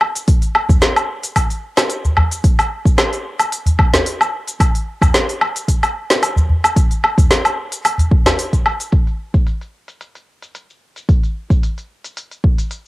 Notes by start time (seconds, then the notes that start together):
0.01 low woodblock
0.15 open hi-hat, cabasa
0.28 kick, open hi-hat, cabasa
0.42 open hi-hat, cabasa
0.55 low woodblock
0.69 kick, udu, cabasa
0.82 snare, open hi-hat, cabasa
0.96 open hi-hat, cabasa, low woodblock
1.23 open hi-hat, cabasa
1.36 kick, open hi-hat, cabasa, low woodblock
1.50 open hi-hat, cabasa
1.77 snare, open hi-hat, cabasa, low woodblock
1.90 open hi-hat, cabasa
2.05 udu, cabasa
2.17 udu, low woodblock
2.31 open hi-hat, cabasa
2.44 kick, open hi-hat, cabasa
2.59 open hi-hat, cabasa, low woodblock
2.85 kick, cabasa
2.98 snare, open hi-hat, cabasa, low woodblock
3.13 open hi-hat, cabasa
3.40 open hi-hat, cabasa, low woodblock
3.52 open hi-hat, cabasa
3.66 open hi-hat, udu, cabasa
3.79 kick, low woodblock
3.93 snare, open hi-hat, udu, cabasa
4.06 open hi-hat, cabasa
4.21 cabasa, low woodblock
4.48 open hi-hat, cabasa
4.60 kick, open hi-hat, cabasa, low woodblock
4.75 open hi-hat, cabasa
5.02 kick, udu, cabasa, low woodblock
5.14 snare, open hi-hat, cabasa
5.29 open hi-hat, cabasa
5.41 low woodblock
5.56 open hi-hat, cabasa
5.68 kick, open hi-hat, cabasa
5.83 open hi-hat, cabasa, low woodblock
6.10 snare, open hi-hat, cabasa
6.23 open hi-hat, cabasa, low woodblock
6.36 udu, cabasa
6.49 udu
6.64 open hi-hat, cabasa, low woodblock
6.76 kick, open hi-hat, cabasa
6.91 open hi-hat, cabasa
7.04 low woodblock
7.18 kick, open hi-hat, udu, cabasa
7.31 snare, open hi-hat, cabasa
7.45 open hi-hat, cabasa, low woodblock
7.72 open hi-hat, cabasa
7.85 open hi-hat, cabasa, low woodblock
7.98 open hi-hat, udu, cabasa
8.11 kick
8.25 snare, open hi-hat, udu, cabasa, low woodblock
8.39 open hi-hat, cabasa
8.53 kick, open hi-hat, cabasa
8.66 low woodblock
8.80 open hi-hat, cabasa
8.92 kick, open hi-hat, cabasa
9.07 open hi-hat, cabasa
9.34 kick, cabasa
9.47 open hi-hat, cabasa
9.61 open hi-hat, cabasa
9.88 open hi-hat, cabasa
10.01 open hi-hat, cabasa
10.15 open hi-hat, cabasa
10.43 open hi-hat, cabasa
10.55 open hi-hat, cabasa
10.70 cabasa
10.96 open hi-hat, cabasa
11.09 kick, open hi-hat, cabasa
11.23 open hi-hat, cabasa
11.50 kick, cabasa
11.63 open hi-hat, cabasa
11.78 open hi-hat, cabasa
12.04 open hi-hat, cabasa
12.17 open hi-hat, cabasa
12.31 open hi-hat, cabasa
12.44 kick
12.58 open hi-hat, cabasa
12.71 open hi-hat, cabasa